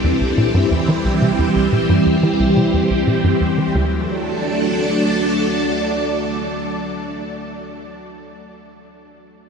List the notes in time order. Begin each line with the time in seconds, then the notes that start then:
Already playing: C2 E3 G3 C4 D4 G4 A4 D5
0.04 E2
0.21 C2
0.38 A#2
0.55 G2
0.71 E2
0.78 C5
0.88 E3
1.05 C2
1.22 C3
1.39 E2
1.56 C2
1.73 A#2
1.90 G2
2.06 E2
2.23 E3
2.40 C2
2.57 C3
2.74 E2
2.91 C2
3.07 A#2
3.24 G2
3.41 E2
3.58 E3
3.74 D2 F#3
3.85 A3
3.95 D4
4.05 A4
4.15 D5